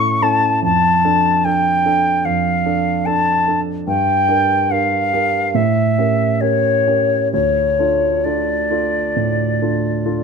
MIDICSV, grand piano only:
0, 0, Header, 1, 2, 480
1, 0, Start_track
1, 0, Key_signature, -1, "minor"
1, 0, Tempo, 814111
1, 370, Time_signature, 4, 2, 24, 8
1, 2288, Tempo, 834492
1, 3248, Tempo, 859599
1, 3728, Tempo, 909091
1, 5749, End_track
2, 0, Start_track
2, 0, Title_t, "Grand piano"
2, 0, Program_c, 0, 0
2, 0, Control_c, 0, 64, 127
2, 0, Note_on_c, 0, 45, 35
2, 0, Note_on_c, 0, 61, 29
2, 0, Note_on_c, 0, 64, 32
2, 0, Note_on_c, 0, 69, 32
2, 103, Note_off_c, 0, 61, 0
2, 105, Note_off_c, 0, 64, 0
2, 105, Note_off_c, 0, 69, 0
2, 130, Note_on_c, 0, 61, 30
2, 130, Note_on_c, 0, 64, 27
2, 133, Note_on_c, 0, 69, 33
2, 347, Note_off_c, 0, 61, 0
2, 348, Note_off_c, 0, 64, 0
2, 349, Note_off_c, 0, 69, 0
2, 367, Note_on_c, 0, 41, 35
2, 381, Control_c, 0, 64, 0
2, 386, Note_off_c, 0, 45, 0
2, 494, Control_c, 0, 64, 127
2, 604, Note_off_c, 0, 41, 0
2, 616, Note_on_c, 0, 62, 32
2, 618, Note_on_c, 0, 69, 33
2, 833, Note_off_c, 0, 62, 0
2, 834, Note_off_c, 0, 69, 0
2, 855, Note_on_c, 0, 62, 28
2, 859, Note_on_c, 0, 69, 30
2, 1069, Note_off_c, 0, 62, 0
2, 1071, Note_off_c, 0, 69, 0
2, 1091, Note_on_c, 0, 62, 31
2, 1096, Note_on_c, 0, 69, 33
2, 1303, Note_off_c, 0, 62, 0
2, 1305, Note_off_c, 0, 69, 0
2, 1329, Note_on_c, 0, 41, 33
2, 1557, Note_off_c, 0, 41, 0
2, 1566, Note_on_c, 0, 62, 30
2, 1569, Note_on_c, 0, 69, 34
2, 1781, Note_off_c, 0, 62, 0
2, 1783, Note_off_c, 0, 69, 0
2, 1809, Note_on_c, 0, 62, 30
2, 1809, Note_on_c, 0, 69, 30
2, 2024, Note_off_c, 0, 62, 0
2, 2025, Note_off_c, 0, 69, 0
2, 2049, Note_on_c, 0, 62, 26
2, 2050, Note_on_c, 0, 69, 28
2, 2265, Note_off_c, 0, 62, 0
2, 2265, Note_off_c, 0, 69, 0
2, 2283, Note_on_c, 0, 43, 35
2, 2295, Control_c, 0, 64, 0
2, 2382, Control_c, 0, 64, 127
2, 2513, Note_off_c, 0, 43, 0
2, 2518, Note_on_c, 0, 62, 27
2, 2521, Note_on_c, 0, 67, 28
2, 2524, Note_on_c, 0, 70, 32
2, 2736, Note_off_c, 0, 62, 0
2, 2738, Note_off_c, 0, 67, 0
2, 2739, Note_off_c, 0, 70, 0
2, 2763, Note_on_c, 0, 62, 26
2, 2765, Note_on_c, 0, 67, 27
2, 2769, Note_on_c, 0, 70, 31
2, 2982, Note_off_c, 0, 62, 0
2, 2983, Note_off_c, 0, 67, 0
2, 2985, Note_off_c, 0, 70, 0
2, 3008, Note_on_c, 0, 62, 25
2, 3008, Note_on_c, 0, 67, 30
2, 3010, Note_on_c, 0, 70, 31
2, 3226, Note_off_c, 0, 62, 0
2, 3226, Note_off_c, 0, 67, 0
2, 3227, Note_off_c, 0, 70, 0
2, 3245, Note_on_c, 0, 45, 35
2, 3258, Control_c, 0, 64, 0
2, 3341, Control_c, 0, 64, 127
2, 3476, Note_off_c, 0, 45, 0
2, 3487, Note_on_c, 0, 61, 23
2, 3491, Note_on_c, 0, 67, 25
2, 3493, Note_on_c, 0, 70, 27
2, 3707, Note_off_c, 0, 61, 0
2, 3708, Note_off_c, 0, 67, 0
2, 3710, Note_off_c, 0, 70, 0
2, 3731, Note_on_c, 0, 61, 24
2, 3732, Note_on_c, 0, 67, 25
2, 3733, Note_on_c, 0, 70, 29
2, 3946, Note_off_c, 0, 61, 0
2, 3947, Note_off_c, 0, 67, 0
2, 3947, Note_off_c, 0, 70, 0
2, 3971, Note_on_c, 0, 61, 25
2, 3974, Note_on_c, 0, 67, 23
2, 3976, Note_on_c, 0, 70, 23
2, 4190, Note_off_c, 0, 61, 0
2, 4191, Note_off_c, 0, 67, 0
2, 4192, Note_off_c, 0, 70, 0
2, 4217, Note_on_c, 0, 38, 33
2, 4219, Control_c, 0, 64, 0
2, 4311, Control_c, 0, 64, 127
2, 4447, Note_off_c, 0, 38, 0
2, 4456, Note_on_c, 0, 62, 25
2, 4460, Note_on_c, 0, 65, 25
2, 4461, Note_on_c, 0, 69, 25
2, 4675, Note_off_c, 0, 62, 0
2, 4676, Note_off_c, 0, 65, 0
2, 4677, Note_off_c, 0, 69, 0
2, 4698, Note_on_c, 0, 62, 23
2, 4701, Note_on_c, 0, 65, 23
2, 4704, Note_on_c, 0, 69, 23
2, 4917, Note_off_c, 0, 62, 0
2, 4919, Note_off_c, 0, 65, 0
2, 4920, Note_off_c, 0, 69, 0
2, 4938, Note_on_c, 0, 62, 23
2, 4941, Note_on_c, 0, 65, 26
2, 4944, Note_on_c, 0, 69, 29
2, 5156, Note_off_c, 0, 62, 0
2, 5157, Note_off_c, 0, 65, 0
2, 5159, Note_off_c, 0, 69, 0
2, 5182, Note_on_c, 0, 45, 28
2, 5409, Note_off_c, 0, 45, 0
2, 5422, Note_on_c, 0, 62, 20
2, 5424, Note_on_c, 0, 65, 23
2, 5424, Note_on_c, 0, 69, 24
2, 5633, Note_off_c, 0, 62, 0
2, 5634, Note_off_c, 0, 65, 0
2, 5634, Note_off_c, 0, 69, 0
2, 5652, Note_on_c, 0, 62, 25
2, 5653, Note_on_c, 0, 65, 27
2, 5655, Note_on_c, 0, 69, 26
2, 5749, Note_off_c, 0, 62, 0
2, 5749, Note_off_c, 0, 65, 0
2, 5749, Note_off_c, 0, 69, 0
2, 5749, End_track
0, 0, End_of_file